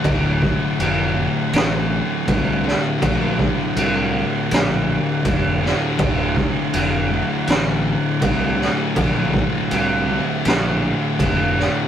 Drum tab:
CC |x-x-x-x-|x-x-x-x-|x-x-x-x-|x-x-x-x-|
SD |----o--o|----o--o|----o--o|----o--o|
BD |oo----o-|oo----o-|oo----o-|oo----o-|